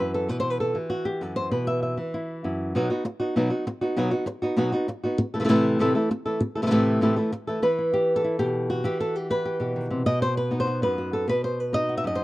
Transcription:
Already playing: nylon-string guitar E3 E4
0.00 nylon-string guitar F#2 B4
0.14 nylon-string guitar A4
0.29 nylon-string guitar B2 B4
0.40 nylon-string guitar C5
0.51 nylon-string guitar B4
0.60 nylon-string guitar A4
0.75 nylon-string guitar E3 G4
0.90 nylon-string guitar F#4
1.05 nylon-string guitar G4
1.21 nylon-string guitar F#2 A4
1.36 nylon-string guitar C5
1.51 nylon-string guitar B2 B4
1.67 nylon-string guitar E5
1.83 nylon-string guitar E5
1.97 nylon-string guitar E3
2.14 nylon-string guitar E4
2.44 nylon-string guitar F#2 E4
2.75 nylon-string guitar B2 F#3 B3 D#4 F#4
2.90 nylon-string guitar B3 D#4 F#4
3.05 muted nylon-string guitar stroke
3.20 nylon-string guitar B3 D#4 F#4
3.36 nylon-string guitar B2 F#3 B3 D#4 F#4
3.50 nylon-string guitar B3 D#4 F#4
3.67 muted nylon-string guitar stroke
3.81 nylon-string guitar B3 D#4 F#4
3.97 nylon-string guitar B2 F#3 B3 D#4 F#4
4.11 nylon-string guitar B3 D#4 F#4
4.26 muted nylon-string guitar stroke
4.42 nylon-string guitar B3 D#4 F#4
4.57 nylon-string guitar B2 F#3 B3 D#4 F#4
4.72 nylon-string guitar B3 D#4 F#4
4.88 muted nylon-string guitar stroke
5.04 nylon-string guitar B3 D#4 F#4
5.18 muted nylon-string guitar stroke
5.34 nylon-string guitar E3 A3 E4 A4
5.40 nylon-string guitar C3 E3 A3 E4 A4
5.44 nylon-string guitar C3 E3 A3 E4 A4
5.49 nylon-string guitar A2 C3 E3 A3 E4 A4
5.79 nylon-string guitar A2 C3 E3 A3 E4 A4
5.95 nylon-string guitar E3 A3 E4 A4
6.11 muted nylon-string guitar stroke
6.26 nylon-string guitar E3 A3 E4 A4
6.41 muted nylon-string guitar stroke
6.55 nylon-string guitar E3 A3 E4 A4
6.62 nylon-string guitar C3 E3 A3 E4 A4
6.67 nylon-string guitar E3 A3 E4 A4
6.71 nylon-string guitar A2 C3 E3 A3 E4 A4
7.01 nylon-string guitar A2 C3 E3 A3 E4 A4
7.16 nylon-string guitar E3 A3 E4 A4
7.32 muted nylon-string guitar stroke
7.47 nylon-string guitar E3 A3 E4 A4
7.62 nylon-string guitar E3 B4
7.79 nylon-string guitar E4
7.94 nylon-string guitar G4
8.16 nylon-string guitar A4
8.24 nylon-string guitar E4
8.39 nylon-string guitar B2 G4
8.70 nylon-string guitar F#4
8.84 nylon-string guitar E3 G4
9.00 nylon-string guitar A4
9.16 nylon-string guitar G4
9.30 nylon-string guitar E4 B4
9.45 nylon-string guitar G4
9.60 nylon-string guitar B2 G4
9.76 nylon-string guitar D#3
9.90 nylon-string guitar C3
10.06 nylon-string guitar B2 D#5
10.22 nylon-string guitar C5
10.37 nylon-string guitar B4
10.51 nylon-string guitar B3 D#4
10.60 nylon-string guitar C5
10.67 nylon-string guitar F#4
10.82 nylon-string guitar F#2 B4
10.98 nylon-string guitar F#4
11.13 nylon-string guitar A4
11.28 nylon-string guitar B2 B4
11.44 nylon-string guitar C5
11.60 nylon-string guitar B4
11.73 nylon-string guitar D#4 D#5
11.89 nylon-string guitar F#4
11.97 nylon-string guitar E5
12.04 nylon-string guitar F#2 D#5
12.15 nylon-string guitar C5

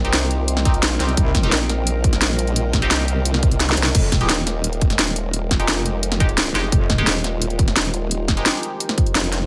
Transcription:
Already playing: wobble bass A#1, ambient pad G3 C4 D#4 F4 A#4 C5 D#5 G5
0.05 synth stab C4 D#4 G4, closed hi-hat
0.13 wobble bass C2, snare, closed hi-hat
0.31 closed hi-hat
0.48 closed hi-hat
0.57 snare
0.65 synth stab C4 D#4 G4, kick, closed hi-hat
0.73 wobble bass B1, closed hi-hat
0.83 snare, closed hi-hat
1.00 wobble bass C2, synth stab C4 D#4 G4, snare, closed hi-hat
1.09 closed hi-hat
1.17 wobble bass C2, kick, closed hi-hat
1.35 kick, snare, closed hi-hat
1.43 synth stab C4 D#4 G4, closed hi-hat
1.52 wobble bass A#1, snare, closed hi-hat
1.69 snare, closed hi-hat
1.87 closed hi-hat
2.04 kick, closed hi-hat
2.13 snare, closed hi-hat
2.21 snare, closed hi-hat
2.39 closed hi-hat
2.47 closed hi-hat
2.56 closed hi-hat
2.73 kick, snare, closed hi-hat
2.82 synth stab C4 D#4 G4, closed hi-hat
2.91 wobble bass C2, snare, closed hi-hat
3.08 closed hi-hat
3.25 closed hi-hat
3.34 snare
3.43 kick, closed hi-hat
3.52 closed hi-hat
3.60 snare, closed hi-hat
3.69 snare, closed hi-hat, zap
3.77 wobble bass C2, closed hi-hat
3.83 snare, closed hi-hat
3.95 wobble bass F1, ambient pad G#3 D#4 F4 C5, kick, closed hi-hat, crash
4.12 kick, snare, closed hi-hat
4.21 synth stab G#3 D#4 G4, closed hi-hat
4.29 wobble bass D#1, snare, closed hi-hat
4.47 snare, closed hi-hat
4.64 closed hi-hat
4.73 closed hi-hat
4.81 kick, closed hi-hat
4.90 snare, closed hi-hat
4.99 snare, closed hi-hat
5.07 closed hi-hat
5.16 closed hi-hat
5.34 closed hi-hat
5.51 kick, snare, closed hi-hat
5.60 synth stab G#3 D#4 G4, closed hi-hat
5.68 wobble bass F1, snare, closed hi-hat
5.86 closed hi-hat
6.03 closed hi-hat
6.12 snare, closed hi-hat
6.20 synth stab G#3 D#4 G4, kick, closed hi-hat
6.29 closed hi-hat
6.38 snare, closed hi-hat
6.46 closed hi-hat
6.55 wobble bass F1, synth stab G#3 D#4 G4, snare, closed hi-hat
6.72 wobble bass F1, ambient pad G4, kick, closed hi-hat
6.90 kick, snare, closed hi-hat
6.98 synth stab G#3 D#4 G4, closed hi-hat
7.07 wobble bass D#1, snare, closed hi-hat
7.24 snare, closed hi-hat
7.42 closed hi-hat
7.50 closed hi-hat
7.59 kick, closed hi-hat
7.68 snare, closed hi-hat
7.76 snare, closed hi-hat
7.85 closed hi-hat
7.94 closed hi-hat
8.11 closed hi-hat
8.28 kick, snare, closed hi-hat
8.37 synth stab G#3 D#4 G4, closed hi-hat
8.46 snare, closed hi-hat
8.63 closed hi-hat
8.80 closed hi-hat
8.89 snare, closed hi-hat
8.98 kick, closed hi-hat
9.07 closed hi-hat
9.15 wobble bass F1, snare, closed hi-hat
9.24 closed hi-hat
9.32 snare, closed hi-hat

